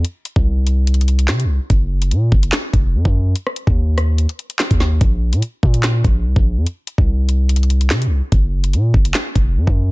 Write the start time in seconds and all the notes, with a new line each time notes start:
0.05 closed hi-hat
0.25 closed hi-hat
0.36 C2, kick
0.67 closed hi-hat
0.87 closed hi-hat
0.94 closed hi-hat
1.01 closed hi-hat
1.08 closed hi-hat
1.19 closed hi-hat
1.28 C3, snare, clap
1.40 closed hi-hat
1.44 C2
1.70 F#1, kick, closed hi-hat
2.02 closed hi-hat
2.11 A#2, closed hi-hat
2.32 F#1, kick
2.43 closed hi-hat
2.52 snare, clap, closed hi-hat
2.73 F1, kick, closed hi-hat
2.94 F#2
3.05 F#2, kick
3.36 closed hi-hat
3.47 cross-stick
3.56 closed hi-hat
3.67 D#2, kick
3.98 cross-stick, closed hi-hat
4.18 closed hi-hat
4.29 closed hi-hat
4.39 closed hi-hat
4.50 closed hi-hat
4.59 snare, clap
4.71 D#2, kick, closed hi-hat
4.80 snare
5.01 A#1, kick, closed hi-hat
5.33 A#2, closed hi-hat
5.42 closed hi-hat
5.63 A#2, kick
5.74 closed hi-hat
5.83 snare, clap, closed hi-hat
6.04 A#1, kick, closed hi-hat
6.25 C2
6.36 A#1, kick
6.57 F2
6.67 closed hi-hat
6.87 closed hi-hat
6.98 C2, kick
7.29 closed hi-hat
7.49 closed hi-hat
7.56 closed hi-hat
7.63 closed hi-hat
7.70 closed hi-hat
7.81 closed hi-hat
7.90 C3, snare, clap
8.02 closed hi-hat
8.07 C2
8.32 F#1, kick, closed hi-hat
8.64 closed hi-hat
8.73 A#2, closed hi-hat
8.94 F#1, kick
9.05 closed hi-hat
9.14 snare, clap, closed hi-hat
9.36 F1, kick, closed hi-hat
9.56 F#2
9.67 F#2, kick